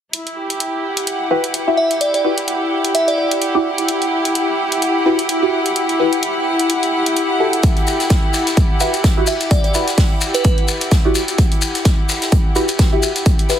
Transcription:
0.13 string section E4, closed hi-hat
0.27 closed hi-hat
0.35 string section G4
0.50 closed hi-hat
0.60 closed hi-hat
0.87 string section F#5
0.97 closed hi-hat
1.07 closed hi-hat
1.31 synth stab E4 F#4 G4 B4
1.44 closed hi-hat
1.54 closed hi-hat
1.67 synth stab E4 F#4 G4 E5
1.77 synth bell E5
1.91 closed hi-hat
2.01 synth bell D5, closed hi-hat
2.14 synth bell D5, closed hi-hat
2.24 synth stab E4 F#4 G4 B4
2.38 closed hi-hat
2.48 closed hi-hat
2.85 closed hi-hat
2.95 synth bell E5, closed hi-hat
3.08 synth bell D5, closed hi-hat
3.18 synth bell D5
3.31 closed hi-hat
3.42 closed hi-hat
3.55 synth stab E4 F#4 G4 D5
3.78 closed hi-hat
3.88 closed hi-hat
4.02 closed hi-hat
4.25 closed hi-hat
4.35 closed hi-hat
4.72 closed hi-hat
4.82 closed hi-hat
5.06 synth stab E4 F#4 G4 B4
5.19 closed hi-hat
5.29 closed hi-hat
5.42 synth stab E4 F#4 G4 E5
5.66 closed hi-hat
5.76 closed hi-hat
5.89 closed hi-hat
5.99 synth stab E4 F#4 G4 B4
6.13 closed hi-hat
6.23 closed hi-hat
6.59 closed hi-hat
6.70 closed hi-hat
6.83 closed hi-hat
7.06 closed hi-hat
7.17 closed hi-hat
7.40 synth stab E4 F#4 G4 A4
7.53 closed hi-hat
7.63 kick, closed hi-hat, maracas
7.77 closed hi-hat
7.87 closed hi-hat, maracas
8.00 snare, closed hi-hat, maracas
8.10 kick, snare, closed hi-hat, maracas
8.33 snare, closed hi-hat, maracas
8.47 snare, closed hi-hat, maracas
8.57 kick, closed hi-hat, maracas
8.80 synth stab E4 F#4 G4 B4, closed hi-hat, maracas
8.94 closed hi-hat, maracas
9.04 kick, snare, closed hi-hat, maracas
9.17 synth stab E4 F#4 G4 E5
9.27 synth bell E5, closed hi-hat, maracas
9.40 closed hi-hat, maracas
9.51 synth bell D5, kick, closed hi-hat, maracas
9.64 synth bell D5, closed hi-hat
9.74 synth stab E4 F#4 G4 B4, closed hi-hat, maracas
9.88 snare, closed hi-hat, maracas
9.98 kick, snare, closed hi-hat, open hi-hat, maracas
10.21 closed hi-hat, maracas
10.34 synth bell B4, closed hi-hat, maracas
10.44 synth bell B4, kick, closed hi-hat, maracas
10.58 closed hi-hat
10.68 closed hi-hat, maracas
10.81 closed hi-hat, maracas
10.91 kick, snare, closed hi-hat, maracas
11.05 synth stab E4 F#4 G4 D5
11.15 closed hi-hat, maracas
11.28 closed hi-hat, maracas
11.38 kick, closed hi-hat, maracas
11.52 closed hi-hat
11.62 closed hi-hat, maracas
11.75 snare, closed hi-hat, maracas
11.85 kick, snare, closed hi-hat, maracas
12.09 snare, closed hi-hat, maracas
12.22 snare, closed hi-hat, maracas
12.32 kick, closed hi-hat, maracas
12.55 synth stab E4 F#4 G4 B4, closed hi-hat, maracas
12.68 closed hi-hat, maracas
12.79 kick, snare, closed hi-hat, maracas
12.92 synth stab E4 F#4 G4 E5
13.02 closed hi-hat, maracas
13.16 closed hi-hat, maracas
13.25 kick, closed hi-hat, maracas
13.38 closed hi-hat
13.49 synth stab E4 F#4 G4 B4, snare, closed hi-hat, maracas

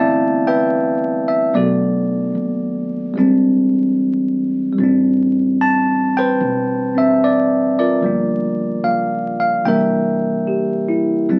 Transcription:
Already playing: upright bass G1, tine electric piano E3 G3 A3 B3 C4 D4 E4 D5 E5 F5 G5 A5
0.47 tine electric piano B4 E5 G5
1.28 tine electric piano E5
1.53 upright bass B1, tine electric piano F#3 A3 B3 D4 F#4 A4 D5
2.35 upright bass D#2
3.14 upright bass E2, tine electric piano G3 G#3 C4
3.19 tine electric piano D4
4.73 tine electric piano G3
4.78 upright bass A1, tine electric piano C4
4.84 tine electric piano D4
5.61 tine electric piano A5
6.17 tine electric piano B4 C5 G5
6.41 upright bass E1
6.95 tine electric piano C4 D4 E5
7.24 tine electric piano D5
7.79 tine electric piano F4 A#4 D5
8.01 upright bass G1, tine electric piano F3 G3 A#3
8.06 tine electric piano D4
8.84 upright bass C#2, tine electric piano F5
9.40 tine electric piano F5
9.65 upright bass C2, tine electric piano E3 G3 A#3 D4 A#4 E5 G5
10.47 tine electric piano G4
10.88 tine electric piano E4
11.29 upright bass F2, tine electric piano G3 A3 C4 D4

